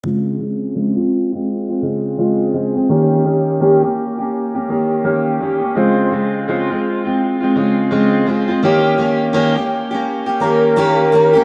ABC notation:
X:1
M:4/4
L:1/16
Q:"Swing 16ths" 1/4=84
K:Dblyd
V:1 name="Soft synth lead"
z16 | z16 | z16 | z8 z2 B6 |]
V:2 name="Steel-string acoustic guitar"
[D,A,CF]2 [D,A,CF]2 [D,A,CF] [A,CF]2 [A,CF]2 [A,CF] [D,A,CF]2 [D,A,CF]2 [D,A,CF] [A,CF] | [E,B,DG]2 [E,B,DG]2 [E,B,DG] [B,DG]2 [B,DG]2 [B,DG] [E,B,DG]2 [E,B,DG]2 [E,B,DG] [B,DG] | [D,A,CF]2 [D,A,CF]2 [D,A,CF] [A,CF]2 [A,CF]2 [A,CF] [D,A,CF]2 [D,A,CF]2 [D,A,CF] [A,CF] | [E,B,DG]2 [E,B,DG]2 [E,B,DG] [B,DG]2 [B,DG]2 [B,DG] [E,B,DG]2 [E,B,DG]2 [E,B,DG] [B,DG] |]